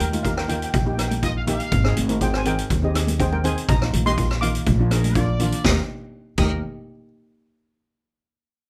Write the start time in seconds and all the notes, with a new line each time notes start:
Already playing: G5
0.00 D#2 A#4, closed hi-hat, high conga
0.13 A#3 D#4 F4, closed hi-hat, high conga
0.23 A#3 D#4 G4 A#4 F5, kick, closed hi-hat
0.37 A#4 G5, cross-stick
0.48 A#3 D#4 F4 A#4 G5, closed hi-hat, low conga
0.57 G5
0.62 G5, closed hi-hat
0.70 A#1 G5, kick, closed hi-hat
0.78 G5
0.86 A#3 D#4 G4 G5
0.93 A#3 G5
0.98 D#4 A#4 G5, cross-stick, closed hi-hat
1.08 G5, closed hi-hat, high conga
1.22 A#3 D#4 F4 D#5, kick, closed hi-hat
1.37 F5
1.47 A#3 D#4 G4 F5, closed hi-hat, low conga
1.60 closed hi-hat
1.72 G#1, kick, closed hi-hat
1.84 C4 D#4 G#4, cross-stick
1.97 G#1, closed hi-hat, high conga
2.09 C4 D#4 A#4, closed hi-hat, high conga
2.20 C4 D#4 G#4 C5 G5, kick, closed hi-hat
2.34 C5 G#5, cross-stick
2.45 C4 D#4 G#4 A#4 G5, closed hi-hat, low conga
2.59 closed hi-hat
2.70 D#2, kick, closed hi-hat
2.82 C4 D#4 G4 G#4 D#5
2.94 C4 D#4 G#4, cross-stick, closed hi-hat
3.07 closed hi-hat, high conga
3.19 C4 D#4 G#4 C5 G5, kick, closed hi-hat
3.32 A#4 G5, high conga
3.44 C4 D#4 G#4 C5 G#5, closed hi-hat, low conga
3.58 closed hi-hat
3.69 A#1 D#5 A#5, kick, closed hi-hat
3.81 A#3 D#4 F4, cross-stick
3.93 A#1, closed hi-hat, high conga, low conga
4.06 A#3 D#4 G4 D#5 C6, closed hi-hat, high conga
4.17 A#3 D#4 F4, kick, closed hi-hat
4.31 cross-stick
4.41 A#3 D#4 F4 F5 D6, closed hi-hat, low conga
4.55 closed hi-hat
4.66 A#1, kick, closed hi-hat, high conga
4.79 A#3 D4 F4
4.90 A#3 D4 G#4 A#4, cross-stick, closed hi-hat
5.04 closed hi-hat, high conga
5.15 A#3 D4 F4 D5, kick, closed hi-hat
5.39 A#3 D4 F4, closed hi-hat, low conga
5.52 closed hi-hat
5.64 D#2 A#3 D#4 G4 A#4 D#6, kick, snare, high conga
6.38 D#2 A#3 D#4 G4 A#4 D#6, kick, crash, high conga